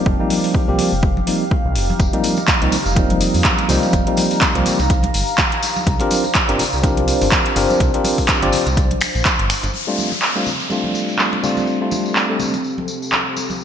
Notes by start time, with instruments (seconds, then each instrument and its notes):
Already playing: tine electric piano F3 G3 A#3 C4 D#4, ambient pad C4 G4 F5
0.06 analog synth bass F1, ambient pad D#4, kick
0.19 tine electric piano F3 G3 A#3 C4 D#4
0.30 open hi-hat, high conga
0.44 open hi-hat
0.54 kick
0.68 analog synth bass C2, tine electric piano F3 G3 A#3 C4 G4
0.79 open hi-hat, high conga, low conga
0.92 analog synth bass F1
1.03 kick
1.17 high conga
1.26 tine electric piano F3 G3 A#3 C4 D#4, open hi-hat
1.51 kick, high conga
1.65 analog synth bass C2
1.75 analog synth bass F1, open hi-hat
1.90 high conga
2.00 analog synth bass F1, ambient pad A#5, kick, closed hi-hat, tambourine, muted conga
2.13 tine electric piano F3 G3 A#3 C4 D#4, closed hi-hat
2.24 open hi-hat, tambourine, high conga
2.37 tambourine, muted conga
2.48 kick, clap, closed hi-hat, tambourine
2.61 analog synth bass C2, tine electric piano F3 G3 A#3 C4 D#4, closed hi-hat, muted conga
2.72 open hi-hat, tambourine, high conga, low conga
2.86 analog synth bass F1, tambourine
2.95 tine electric piano F3 G3 A#3 C4 D#4, kick, closed hi-hat, tambourine, muted conga
3.10 closed hi-hat, high conga
3.21 open hi-hat, tambourine, muted conga
3.34 analog synth bass F2, open hi-hat, tambourine
3.44 kick, clap, closed hi-hat, high conga
3.59 closed hi-hat, muted conga
3.69 analog synth bass C2, tine electric piano F3 G3 A#3 C4 D#4, open hi-hat, tambourine, low conga
3.82 tambourine, muted conga, high conga
3.93 analog synth bass F1, kick, closed hi-hat, tambourine
4.07 tine electric piano F3 G3 A#3 C4 D#4, closed hi-hat
4.17 open hi-hat, tambourine, muted conga, high conga
4.31 open hi-hat, tambourine
4.41 kick, clap, closed hi-hat, tambourine
4.55 analog synth bass C2, tine electric piano F3 G3 A#3 C4 G4, closed hi-hat
4.65 open hi-hat, tambourine, high conga, low conga
4.79 analog synth bass C2, tambourine, muted conga
4.90 ambient pad D4, kick, closed hi-hat, tambourine
5.01 ambient pad C5, closed hi-hat, muted conga, high conga
5.14 analog synth bass G1, open hi-hat, tambourine
5.27 tambourine
5.38 kick, clap, closed hi-hat, tambourine, muted conga, high conga
5.52 closed hi-hat
5.63 open hi-hat, tambourine, muted conga
5.76 tambourine, high conga
5.86 analog synth bass C2, kick, closed hi-hat, tambourine
5.99 tine electric piano C4 D4 F4 G4 A#4, closed hi-hat, muted conga
6.10 open hi-hat, tambourine, high conga
6.24 tambourine, muted conga
6.35 kick, clap, closed hi-hat, tambourine
6.48 analog synth bass G1, tine electric piano C4 D4 F4 G4 A#4, closed hi-hat
6.59 open hi-hat, tambourine, muted conga, high conga, low conga
6.73 analog synth bass C2, tambourine
6.83 tine electric piano C4 D4 F4 G4 A#4, kick, closed hi-hat, tambourine, muted conga
6.97 closed hi-hat, high conga
7.08 open hi-hat, tambourine
7.21 analog synth bass G1, open hi-hat, tambourine, muted conga
7.32 kick, clap, closed hi-hat, high conga
7.45 closed hi-hat, muted conga
7.56 analog synth bass G1, tine electric piano C4 D4 F4 G4 A#4, open hi-hat, tambourine, low conga
7.70 tambourine, high conga
7.80 analog synth bass C2, kick, closed hi-hat, tambourine, muted conga
7.94 tine electric piano C4 D4 F4 G4 A#4, closed hi-hat
8.04 open hi-hat, tambourine, muted conga, high conga
8.18 kick, open hi-hat, tambourine
8.28 kick, clap, closed hi-hat, tambourine
8.42 analog synth bass G1, tine electric piano C4 D4 F4 G4 D5, closed hi-hat, muted conga
8.52 open hi-hat, tambourine, high conga, low conga
8.67 analog synth bass C2, closed hi-hat, tambourine, muted conga
8.77 kick, closed hi-hat, tambourine
8.91 closed hi-hat, high conga
9.01 finger snap, open hi-hat, tambourine, muted conga
9.15 analog synth bass A#1, tambourine
9.25 kick, clap, closed hi-hat, tambourine, muted conga, high conga
9.39 analog synth bass G1, closed hi-hat
9.50 finger snap, open hi-hat, tambourine
9.63 analog synth bass G1, closed hi-hat, tambourine, muted conga, high conga
9.74 analog synth pad C4 G4 A4 F5, ambient pad C4, tambourine, downlifter, muted conga
9.87 tine electric piano G3 A3 C4 D4 F4
9.98 tambourine, high conga
10.12 ambient pad G4, tambourine, muted conga
10.22 clap, tambourine
10.35 tine electric piano G3 A3 C4 D4 F4, muted conga
10.47 tambourine, high conga, low conga
10.60 tambourine
10.70 tine electric piano G3 A3 C4 D4 F4, ambient pad A5, tambourine, muted conga
10.84 high conga
10.94 tambourine, muted conga
11.08 tambourine
11.18 clap, tambourine, high conga
11.33 muted conga
11.43 tine electric piano G3 A3 C4 D4 F4, tambourine, low conga
11.57 tambourine, muted conga, high conga
11.67 tambourine
11.81 tine electric piano G3 A3 C4 D4 F4
11.91 tambourine, muted conga, high conga
12.06 tambourine
12.16 clap, tambourine, muted conga
12.29 tine electric piano G3 A3 C4 D4 A4
12.39 tambourine, high conga, low conga
12.54 tambourine, muted conga
12.64 tambourine
12.76 ambient pad G5, muted conga, high conga
12.88 tambourine
13.02 tambourine
13.12 clap, tambourine, muted conga, high conga
13.37 tambourine, muted conga
13.50 tambourine, high conga
13.61 tambourine